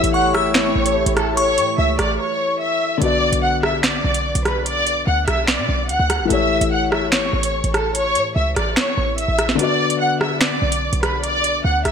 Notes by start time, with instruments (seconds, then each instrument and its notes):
Already playing: felt piano E3 A3 G4 C#5, analog synth pad A3 E4 G4 C#5, violin section E5 E6
0.04 808-style bass A1, closed hi-hat
0.14 violin section F#5 F#6, synth bell C#6
0.34 violin section E5 E6, synth bell E6, cross-stick
0.54 violin section C#5 C#6, finger snap, snare, closed hi-hat
0.76 808-style bass A1
0.86 closed hi-hat
1.06 808-style bass A1, closed hi-hat
1.16 violin section A4 A5, cross-stick, closed hi-hat
1.37 violin section C#5 C#6, synth bell C#6, closed hi-hat
1.58 808-style bass A2, closed hi-hat
1.78 808-style bass C#2, violin section E5 E6
1.99 808-style bass A1, violin section D5 D6, cross-stick, closed hi-hat
2.19 violin section C#5 C#6
2.61 violin section E5 E6
2.98 808-style bass B1, felt piano D3 B3, closed hi-hat
3.02 felt piano F#4, violin section D5 D6
3.06 felt piano D5
3.32 808-style bass B1, closed hi-hat
3.43 violin section F#5 F#6
3.63 violin section E5 E6, cross-stick
3.83 violin section D5 D6, finger snap, snare, closed hi-hat
4.04 808-style bass B1
4.14 closed hi-hat
4.35 808-style bass B1, closed hi-hat
4.45 violin section B4 B5, cross-stick, closed hi-hat
4.66 violin section D5 D6, closed hi-hat
4.87 closed hi-hat
5.07 808-style bass D2, violin section F#5 F#6
5.27 808-style bass B1, violin section E5 E6, cross-stick, closed hi-hat
5.47 violin section D5 D6, finger snap, snare, closed hi-hat
5.58 808-style bass B2
5.69 808-style bass B1
5.89 808-style bass D2, violin section F#5 F#6, closed hi-hat
6.00 808-style bass D2
6.10 cross-stick, closed hi-hat
6.20 808-style bass A1
6.25 felt piano E3 A3
6.30 808-style bass A1, felt piano G4 C#5, violin section E5 E6, closed hi-hat
6.61 808-style bass A1, closed hi-hat
6.72 violin section F#5 F#6
6.92 violin section E5 E6, cross-stick
7.12 violin section C#5 C#6, finger snap, snare, closed hi-hat
7.33 808-style bass A1
7.43 closed hi-hat
7.64 808-style bass A1, closed hi-hat
7.74 violin section A4 A5, cross-stick, closed hi-hat
7.95 violin section C#5 C#6, closed hi-hat
8.15 808-style bass A2, closed hi-hat
8.36 808-style bass C#2, violin section E5 E6
8.56 808-style bass A1, violin section D5 D6, cross-stick, closed hi-hat
8.76 violin section C#5 C#6, finger snap, snare, closed hi-hat
8.97 808-style bass A1
9.18 violin section E5 E6, closed hi-hat
9.28 808-style bass A1
9.39 cross-stick, closed hi-hat
9.49 snare
9.55 felt piano D3 B3, violin section D5, closed hi-hat
9.60 felt piano F#4 D5, violin section D6
9.90 closed hi-hat
10.00 violin section F#5 F#6
10.21 violin section E5 E6, cross-stick
10.41 violin section D5 D6, finger snap, snare, closed hi-hat
10.62 808-style bass B1
10.72 closed hi-hat
10.93 808-style bass B1, closed hi-hat
11.03 violin section B4 B5, cross-stick, closed hi-hat
11.24 violin section D5 D6, closed hi-hat
11.44 closed hi-hat
11.65 808-style bass D2, violin section F#5 F#6
11.85 808-style bass B1, violin section E5 E6, cross-stick, closed hi-hat